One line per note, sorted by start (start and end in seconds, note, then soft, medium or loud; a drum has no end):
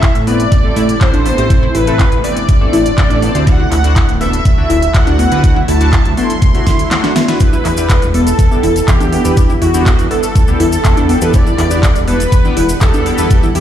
0.00 0.10 A1 loud
0.00 3.43 C3 medium
0.00 3.43 E3 medium
0.00 3.43 A3 medium
0.00 1.48 E4 medium
0.00 0.07 E4 loud
0.00 0.18 E5 loud
0.00 kick loud
0.00 clap loud
0.00 closed hi-hat medium
0.15 0.47 A2 loud
0.15 closed hi-hat soft
0.27 0.42 A3 medium
0.27 0.35 B3 medium
0.27 0.42 C4 medium
0.27 0.42 E4 medium
0.27 0.42 B4 medium
0.27 1.03 D5 loud
0.27 open hi-hat medium
0.40 closed hi-hat medium
0.52 0.70 A1 medium
0.52 kick loud
0.52 closed hi-hat medium
0.64 0.79 A3 medium
0.64 0.79 C4 medium
0.64 0.79 E4 medium
0.64 0.79 A4 loud
0.76 0.95 A2 loud
0.76 0.84 E4 loud
0.76 open hi-hat loud
0.89 closed hi-hat soft
1.01 1.33 A1 medium
1.01 1.23 A3 medium
1.01 1.23 C4 medium
1.01 1.23 E4 medium
1.01 1.23 A4 loud
1.01 1.76 C5 loud
1.01 kick loud
1.01 clap loud
1.01 closed hi-hat medium
1.14 1.18 D4 loud
1.14 closed hi-hat soft
1.26 1.36 A3 medium
1.26 1.33 B3 medium
1.26 1.36 C4 medium
1.26 1.36 E4 medium
1.26 1.36 A4 medium
1.26 open hi-hat loud
1.38 1.70 A1 medium
1.38 1.48 A3 medium
1.38 1.48 C4 medium
1.38 1.48 E4 medium
1.38 1.46 G4 medium
1.38 1.48 C5 medium
1.38 closed hi-hat soft
1.50 1.65 A3 medium
1.50 1.65 C4 medium
1.50 3.45 D4 medium
1.50 1.65 E4 medium
1.50 1.65 A4 loud
1.50 kick loud
1.50 closed hi-hat medium
1.63 1.70 E4 loud
1.75 2.07 A1 medium
1.75 1.82 E4 loud
1.75 2.19 B4 loud
1.75 open hi-hat loud
1.87 1.96 A3 medium
1.87 1.96 C4 medium
1.87 1.96 E4 medium
1.87 1.96 A4 loud
1.87 closed hi-hat medium
1.99 2.04 E4 loud
1.99 kick loud
1.99 clap loud
1.99 closed hi-hat medium
2.12 2.21 A1 loud
2.12 closed hi-hat soft
2.24 2.39 A3 medium
2.24 2.32 B3 medium
2.24 2.39 C4 medium
2.24 2.39 E4 medium
2.24 2.39 B4 medium
2.24 3.48 D5 loud
2.24 open hi-hat medium
2.37 closed hi-hat medium
2.49 2.67 G1 medium
2.49 kick loud
2.49 closed hi-hat medium
2.61 2.75 A3 medium
2.61 2.75 C4 medium
2.61 2.75 E4 medium
2.61 2.75 A4 loud
2.73 2.92 A1 medium
2.73 2.81 E4 loud
2.73 open hi-hat loud
2.86 closed hi-hat medium
2.98 3.30 A1 medium
2.98 3.20 A3 medium
2.98 3.19 C4 medium
2.98 3.20 E4 medium
2.98 3.19 A4 loud
2.98 kick loud
2.98 clap loud
2.98 closed hi-hat medium
3.10 3.15 D4 loud
3.10 closed hi-hat soft
3.22 3.33 A3 medium
3.22 3.30 B3 medium
3.22 3.33 C4 medium
3.22 3.33 E4 medium
3.22 3.33 A4 medium
3.22 open hi-hat loud
3.35 3.67 D2 loud
3.35 3.45 A3 medium
3.35 3.45 C4 medium
3.35 3.45 E4 medium
3.35 3.42 G4 medium
3.35 3.45 C5 medium
3.35 closed hi-hat medium
3.47 13.60 D3 medium
3.47 7.37 F#3 medium
3.47 3.62 A3 medium
3.47 7.37 A3 medium
3.47 3.62 D4 medium
3.47 3.62 E4 medium
3.47 11.30 E4 medium
3.47 3.62 F#4 loud
3.47 4.11 F#5 loud
3.47 kick loud
3.47 closed hi-hat medium
3.60 3.67 E4 loud
3.72 4.04 D2 loud
3.72 3.79 E4 medium
3.72 clap medium
3.72 open hi-hat loud
3.84 3.93 A3 medium
3.84 3.93 D4 medium
3.84 3.93 E4 medium
3.84 3.93 F#4 loud
3.84 closed hi-hat medium
3.96 4.01 E4 loud
3.96 kick loud
3.96 clap loud
3.96 closed hi-hat medium
4.09 4.40 D1 loud
4.09 closed hi-hat soft
4.21 4.35 A3 medium
4.21 4.28 B3 medium
4.21 4.35 D4 medium
4.21 4.35 E4 medium
4.21 4.35 A4 medium
4.21 4.96 E5 loud
4.21 open hi-hat medium
4.33 closed hi-hat medium
4.45 4.64 D2 medium
4.45 kick loud
4.45 closed hi-hat medium
4.58 4.72 A3 medium
4.58 4.72 D4 medium
4.58 4.72 E4 medium
4.58 4.72 F#4 loud
4.70 4.88 D1 loud
4.70 4.78 E4 loud
4.70 open hi-hat loud
4.82 closed hi-hat medium
4.95 5.26 D2 medium
4.95 5.16 A3 medium
4.95 5.16 D4 medium
4.95 5.16 E4 medium
4.95 5.16 F#4 loud
4.95 5.59 F#5 loud
4.95 kick loud
4.95 clap loud
4.95 closed hi-hat medium
5.07 5.11 D4 loud
5.07 closed hi-hat soft
5.19 5.30 A3 medium
5.19 5.27 B3 medium
5.19 5.30 D4 medium
5.19 5.30 E4 medium
5.19 5.30 F#4 medium
5.19 open hi-hat medium
5.32 5.63 D2 medium
5.32 5.42 A3 medium
5.32 5.42 D4 medium
5.32 5.42 E4 medium
5.32 5.39 F#4 medium
5.32 5.42 B4 medium
5.32 closed hi-hat medium
5.44 5.58 A3 medium
5.44 5.58 D4 medium
5.44 5.58 E4 medium
5.44 5.58 F#4 loud
5.44 kick loud
5.44 closed hi-hat medium
5.56 5.64 E4 loud
5.68 6.00 D2 medium
5.68 5.76 E4 loud
5.68 6.13 A5 loud
5.68 open hi-hat loud
5.81 5.90 A3 medium
5.81 5.90 D4 medium
5.81 5.90 E4 medium
5.81 5.90 F#4 loud
5.81 closed hi-hat medium
5.93 5.97 E4 loud
5.93 kick loud
5.93 clap loud
5.93 closed hi-hat medium
6.05 6.14 D2 loud
6.05 closed hi-hat soft
6.17 6.32 A3 medium
6.17 6.25 B3 medium
6.17 6.32 D4 medium
6.17 6.32 E4 medium
6.17 6.32 A4 medium
6.17 7.31 C6 loud
6.17 open hi-hat medium
6.30 closed hi-hat medium
6.42 6.60 C2 medium
6.42 kick loud
6.42 closed hi-hat medium
6.42 swell medium
6.55 6.69 A3 medium
6.55 6.69 D4 medium
6.55 6.69 E4 medium
6.55 6.69 F#4 loud
6.55 closed hi-hat soft
6.67 6.85 D2 medium
6.67 6.74 E4 loud
6.67 kick medium
6.67 snare medium
6.67 open hi-hat loud
6.79 closed hi-hat medium
6.91 7.13 A3 medium
6.91 7.13 D4 medium
6.91 7.13 E4 medium
6.91 7.13 F#4 loud
6.91 snare medium
6.91 clap loud
6.91 closed hi-hat medium
7.04 7.08 D4 loud
7.04 snare medium
7.04 closed hi-hat soft
7.16 7.27 A3 medium
7.16 7.23 B3 medium
7.16 7.27 D4 medium
7.16 7.26 E4 medium
7.16 7.26 F#4 medium
7.16 snare loud
7.16 open hi-hat loud
7.28 7.39 A3 medium
7.28 7.39 D4 medium
7.28 7.39 E4 medium
7.28 7.36 F#4 medium
7.28 7.39 B4 medium
7.28 snare medium
7.28 closed hi-hat medium
7.40 13.60 G3 medium
7.40 7.55 B3 medium
7.40 13.60 B3 medium
7.40 7.55 D4 medium
7.40 7.55 E4 medium
7.40 7.55 G4 medium
7.40 8.05 B4 loud
7.40 kick loud
7.40 closed hi-hat medium
7.40 maracas medium
7.53 7.60 E4 loud
7.53 maracas soft
7.65 7.97 E2 loud
7.65 7.73 E4 loud
7.65 clap medium
7.65 open hi-hat loud
7.77 7.86 B3 medium
7.77 7.86 D4 medium
7.77 7.86 E4 medium
7.77 7.86 G4 loud
7.77 closed hi-hat medium
7.77 maracas medium
7.89 7.94 A4 medium
7.89 kick loud
7.89 clap loud
7.89 closed hi-hat medium
7.89 maracas medium
8.02 8.34 E1 loud
8.02 closed hi-hat soft
8.02 maracas soft
8.14 8.29 B3 medium
8.14 8.22 B3 medium
8.14 8.29 D4 medium
8.14 8.29 E4 medium
8.14 8.29 A4 medium
8.14 8.89 A4 loud
8.14 open hi-hat medium
8.27 closed hi-hat medium
8.27 maracas medium
8.39 8.57 E2 medium
8.39 kick loud
8.39 closed hi-hat medium
8.39 maracas medium
8.51 8.65 B3 medium
8.51 8.65 D4 medium
8.51 8.65 E4 medium
8.51 8.65 G4 loud
8.51 maracas soft
8.63 8.82 E1 loud
8.63 8.71 E4 loud
8.63 open hi-hat loud
8.76 closed hi-hat medium
8.76 maracas medium
8.88 9.20 E2 loud
8.88 9.10 B3 medium
8.88 9.10 D4 medium
8.88 9.10 E4 medium
8.88 9.10 G4 loud
8.88 9.52 G4 loud
8.88 kick loud
8.88 clap loud
8.88 closed hi-hat medium
8.88 maracas medium
9.01 9.05 D4 loud
9.01 closed hi-hat soft
9.01 maracas soft
9.13 9.23 B3 medium
9.13 9.20 B3 medium
9.13 9.23 D4 medium
9.13 9.23 E4 medium
9.13 9.23 G4 medium
9.13 open hi-hat loud
9.25 9.57 E2 medium
9.25 9.35 B3 medium
9.25 9.35 D4 medium
9.25 9.35 E4 medium
9.25 9.32 G4 medium
9.25 9.35 B4 medium
9.25 closed hi-hat medium
9.25 maracas medium
9.37 9.52 B3 medium
9.37 9.52 D4 medium
9.37 9.52 E4 medium
9.37 9.52 G4 loud
9.37 kick loud
9.37 closed hi-hat medium
9.37 maracas medium
9.50 9.57 E4 loud
9.50 maracas soft
9.62 9.94 E2 medium
9.62 9.69 E4 loud
9.62 10.06 F#4 loud
9.62 open hi-hat loud
9.74 9.83 B3 medium
9.74 9.83 D4 medium
9.74 9.83 E4 medium
9.74 9.83 G4 loud
9.74 closed hi-hat medium
9.74 maracas medium
9.86 9.91 A4 medium
9.86 kick loud
9.86 clap loud
9.86 closed hi-hat medium
9.86 maracas medium
9.99 10.08 E2 loud
9.99 closed hi-hat soft
9.99 maracas soft
10.11 10.18 B3 medium
10.11 10.25 B3 medium
10.11 10.25 D4 medium
10.11 10.25 E4 medium
10.11 11.35 A4 loud
10.11 10.25 A4 medium
10.11 11.35 A4 loud
10.11 open hi-hat medium
10.23 closed hi-hat medium
10.23 maracas medium
10.35 10.54 D2 medium
10.35 kick loud
10.35 closed hi-hat medium
10.35 maracas medium
10.48 10.62 B3 medium
10.48 10.62 D4 medium
10.48 10.62 E4 medium
10.48 10.62 G4 loud
10.48 maracas soft
10.60 10.78 E2 medium
10.60 10.68 E4 loud
10.60 open hi-hat loud
10.73 closed hi-hat medium
10.73 maracas medium
10.84 11.17 E2 medium
10.84 11.06 B3 medium
10.84 11.06 D4 medium
10.84 11.06 E4 medium
10.84 11.06 G4 loud
10.84 kick loud
10.84 clap loud
10.84 closed hi-hat medium
10.84 maracas medium
10.97 11.02 D4 loud
10.97 closed hi-hat soft
10.97 maracas soft
11.09 11.17 B3 medium
11.09 11.20 B3 medium
11.09 11.20 D4 medium
11.09 11.20 E4 medium
11.09 11.20 G4 medium
11.09 open hi-hat loud
11.21 11.53 E2 loud
11.21 11.32 B3 medium
11.21 11.32 D4 medium
11.21 11.32 E4 medium
11.21 11.29 G4 medium
11.21 11.32 B4 medium
11.21 closed hi-hat medium
11.21 maracas medium
11.33 11.48 B3 medium
11.33 11.48 D4 medium
11.33 11.48 E4 medium
11.33 11.48 G4 loud
11.33 11.98 D5 loud
11.33 13.60 F#5 medium
11.33 kick loud
11.33 closed hi-hat medium
11.33 maracas medium
11.46 11.54 E4 loud
11.46 maracas soft
11.58 11.90 E2 loud
11.58 11.66 E4 loud
11.58 clap medium
11.58 open hi-hat loud
11.71 11.80 B3 loud
11.71 11.80 D4 medium
11.71 11.80 E4 medium
11.71 11.80 G4 loud
11.71 closed hi-hat medium
11.71 maracas medium
11.83 11.88 A4 medium
11.83 kick loud
11.83 clap loud
11.83 closed hi-hat medium
11.83 maracas medium
11.95 12.27 E1 loud
11.95 closed hi-hat soft
11.95 maracas soft
12.08 12.15 B3 medium
12.08 12.22 B3 medium
12.08 12.22 D4 medium
12.08 12.22 E4 medium
12.08 12.22 A4 medium
12.08 12.72 B4 loud
12.08 open hi-hat loud
12.20 closed hi-hat medium
12.20 maracas medium
12.32 12.51 E2 medium
12.32 kick loud
12.32 closed hi-hat medium
12.32 maracas medium
12.45 12.59 B3 medium
12.45 12.59 D4 medium
12.45 12.59 E4 medium
12.45 12.59 G4 loud
12.45 maracas soft
12.57 12.75 E1 loud
12.57 12.64 E4 loud
12.57 open hi-hat loud
12.69 closed hi-hat medium
12.69 maracas medium
12.81 13.13 E2 medium
12.81 13.03 B3 medium
12.81 13.03 D4 medium
12.81 13.03 E4 medium
12.81 13.03 G4 loud
12.81 13.45 A4 loud
12.81 13.46 A4 loud
12.81 kick loud
12.81 clap loud
12.81 closed hi-hat medium
12.81 maracas medium
12.94 12.98 D4 loud
12.94 closed hi-hat soft
12.94 maracas soft
13.06 13.14 B3 medium
13.06 13.17 B3 medium
13.06 13.17 D4 medium
13.06 13.17 E4 medium
13.06 13.17 G4 medium
13.06 open hi-hat loud
13.18 13.50 E2 medium
13.18 13.29 B3 medium
13.18 13.29 D4 medium
13.18 13.29 E4 medium
13.18 13.26 G4 medium
13.18 13.29 B4 medium
13.18 closed hi-hat medium
13.18 maracas medium
13.30 13.45 B3 medium
13.30 13.45 D4 medium
13.30 13.45 E4 medium
13.30 13.45 G4 loud
13.30 kick loud
13.30 closed hi-hat medium
13.30 maracas medium
13.43 13.50 E4 loud
13.43 maracas soft
13.55 13.60 E2 medium
13.55 13.60 E4 loud
13.55 13.60 G4 loud
13.55 open hi-hat loud